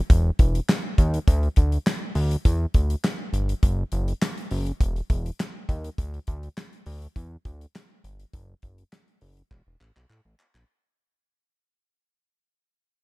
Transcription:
0.10 analog synth bass E1, kick, closed hi-hat
0.39 analog synth bass E1, kick, closed hi-hat
0.55 closed hi-hat
0.69 snare, clap, closed hi-hat
0.98 analog synth bass D#2, kick, closed hi-hat
1.14 closed hi-hat
1.28 analog synth bass D2, kick, closed hi-hat
1.43 closed hi-hat
1.56 analog synth bass D2, kick, closed hi-hat
1.72 closed hi-hat
1.86 snare, clap, closed hi-hat
2.15 analog synth bass D2, open hi-hat
2.31 closed hi-hat
2.45 analog synth bass E2, kick, closed hi-hat
2.74 analog synth bass D2, kick, closed hi-hat
2.90 closed hi-hat
3.04 snare, clap, closed hi-hat
3.33 analog synth bass G1, closed hi-hat
3.49 closed hi-hat
3.63 analog synth bass F#1, kick, closed hi-hat
3.92 analog synth bass F#1, closed hi-hat
4.08 closed hi-hat
4.21 snare, clap, closed hi-hat
4.38 closed hi-hat
4.51 analog synth bass F#1, open hi-hat
4.66 closed hi-hat
4.80 analog synth bass E1, kick, closed hi-hat
4.96 closed hi-hat
5.10 analog synth bass E1, kick, closed hi-hat
5.26 closed hi-hat
5.39 snare, clap, closed hi-hat
5.69 analog synth bass D#2, kick, closed hi-hat
5.84 closed hi-hat
5.98 analog synth bass D2, kick, closed hi-hat
6.14 closed hi-hat
6.27 analog synth bass D2, kick, closed hi-hat
6.43 closed hi-hat
6.57 snare, clap, closed hi-hat
6.73 closed hi-hat
6.86 analog synth bass D2, open hi-hat
7.02 closed hi-hat
7.16 analog synth bass E2, kick, closed hi-hat
7.45 analog synth bass D2, kick, closed hi-hat
7.61 closed hi-hat
7.75 snare, clap, closed hi-hat
8.04 analog synth bass G1, closed hi-hat
8.20 closed hi-hat
8.33 analog synth bass F#1, kick, closed hi-hat
8.62 analog synth bass F#1, kick, closed hi-hat
8.78 closed hi-hat
8.92 snare, clap, closed hi-hat
9.08 closed hi-hat
9.21 analog synth bass F#1, open hi-hat
9.37 closed hi-hat
9.51 analog synth bass E1, kick, clap
9.67 analog synth bass E1
9.81 analog synth bass A1, clap
9.96 analog synth bass B1, clap
10.10 analog synth bass A2, clap
10.25 analog synth bass A1
10.40 clap
10.55 analog synth bass A#1, clap

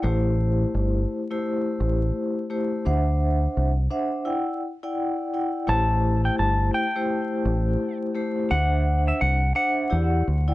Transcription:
0.02 fingered electric bass A1, vibraphone A3 E4 G4 C5
0.75 fingered electric bass G1
1.31 vibraphone A3 E4 G4 C5
1.80 fingered electric bass A1
2.50 vibraphone A3 E4 G4 C5
2.85 fingered electric bass D2, vibraphone D4 C5 E5 F#5
3.57 fingered electric bass C2
3.90 vibraphone D4 C5 E5 F#5
4.25 vibraphone E4 D5 F#5 G5
4.83 vibraphone E4 D5 F#5 G5
5.33 vibraphone E4 D5 F#5 G5
5.67 fingered electric bass A1, vibraphone A3 E4 G4 C5, clean electric guitar A5
6.25 clean electric guitar G5
6.39 fingered electric bass G1, clean electric guitar A5
6.74 clean electric guitar G5
6.95 vibraphone A3 E4 G4 C5
7.45 fingered electric bass A1
8.15 vibraphone A3 E4 G4 C5
8.50 fingered electric bass D2, vibraphone D4 C5 E5 F#5, clean electric guitar F#5
9.08 clean electric guitar E5
9.21 fingered electric bass C2, clean electric guitar F#5
9.55 vibraphone D4 C5 E5 F#5, clean electric guitar F#5
9.90 fingered electric bass E2, vibraphone E4 G4 D5 F#5
10.28 fingered electric bass D2
10.48 vibraphone E4 D5 F#5 G5

